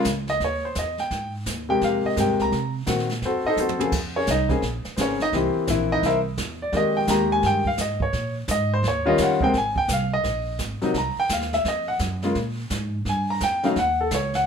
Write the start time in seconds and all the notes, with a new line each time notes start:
0.04 C#2, kick, snare, hi-hat pedal
0.27 D#5, snare
0.40 D#2, brush sweep, kick, snare
0.44 C#5
0.65 C5
0.75 E2 D#5, kick, snare, hi-hat pedal
0.98 G5, snare
1.11 G#2, brush sweep, kick, snare
1.46 D#2, kick, snare, hi-hat pedal
1.69 C3 G#3 A#3 G4 G5
1.81 F2 F5, brush sweep, kick, snare
2.04 D#5, muted upright bass stroke
2.16 G2 C3 G#3 A#3 G4 G5, kick, snare, hi-hat pedal
2.29 D#2
2.39 C2 A#5, snare
2.52 C3, brush sweep, kick, snare
2.86 A#2 D#3 A#3 C4 F#4, kick, snare, hi-hat pedal
2.99 snare
3.09 snare
3.22 F2 F#4 A4 C5, brush sweep, kick, snare
3.26 C4
3.44 D#4 A4 C5 D#5, muted upright bass stroke
3.56 F#2 C5, hi-hat pedal, high tom
3.61 C4 F#4 A4
3.69 floor tom
3.79 C#3 A#3 C4 G#4, floor tom
3.92 F2, brush sweep, kick, snare, crash
4.16 C#4 G#4 A#4 C#5
4.27 C2 D#4 D#5, kick, snare, hi-hat pedal
4.49 C#3 A#3 C4 G#4, kick, snare
4.62 A#1, brush sweep, kick, snare
4.85 muted upright bass stroke, snare
4.97 G#1 C#3 A#3 C4 G#4 C5, kick, snare, hi-hat pedal
5.01 C#4 A#4 C#5
5.20 D#4 D#5, snare
5.32 C2 E3 A#3 C4 E4 G4 C5, brush sweep, kick, snare
5.55 muted upright bass stroke
5.67 A#1 E3 A#3 C4 E4, kick, snare, hi-hat pedal
5.92 D#4 D#5
6.03 C2 E4 A#4 C5 E5, brush sweep, kick, snare
6.37 E2, kick, snare, hi-hat pedal
6.62 D5
6.72 F2 D#3 G#3 A#3 G4, brush sweep, kick, snare
6.77 D#5
6.97 G5
7.07 D#2 D#3 G#3 A#3 G4 A#5, kick, snare, hi-hat pedal
7.32 G#5
7.43 G2 G5, brush sweep, kick, snare
7.65 F5, kick
7.77 G#2 D#5, kick, snare, hi-hat pedal
8.00 C#5, kick
8.13 A#2, brush sweep, kick, snare
8.48 G#2 D#5, kick, snare, hi-hat pedal
8.74 C5
8.83 D#2, brush sweep, kick, snare
8.88 C#5
9.05 D#3 G3 C#4 F4 D#5
9.18 F2, kick, snare, hi-hat pedal
9.22 F#5
9.41 C3 G#3 A#3 C4 G5, kick
9.53 G#1, brush sweep, kick, snare
9.58 G#5
9.76 G5, kick
9.88 C2, kick, snare, hi-hat pedal
9.93 F5
10.13 D#5
10.24 A#1, brush sweep, kick, snare
10.58 G#1, kick, snare, hi-hat pedal
10.81 C3 F#3 A#3 D#4, muted upright bass stroke, snare
10.94 C2 A#5, brush sweep, kick, snare
11.16 G5, muted upright bass stroke
11.29 D#2 F5, kick, snare, hi-hat pedal
11.41 snare
11.53 E5, snare
11.64 F2 D#5, brush sweep, kick, snare
11.88 F#5
11.99 F#2, kick, snare, hi-hat pedal
12.22 C#3 G#3 A#3 F4, snare
12.35 A#2, brush sweep, kick, snare
12.70 G#2, kick, snare, hi-hat pedal
13.05 G2, brush sweep, kick, snare
13.09 G#5
13.30 A#5
13.40 F2 G5, kick, snare, hi-hat pedal
13.63 C#3 F#3 A3 D#4 F5, snare
13.76 D#2 F#5, brush sweep, kick, snare
14.01 A4
14.11 C#2 C#5, kick, snare, hi-hat pedal
14.34 F#5, snare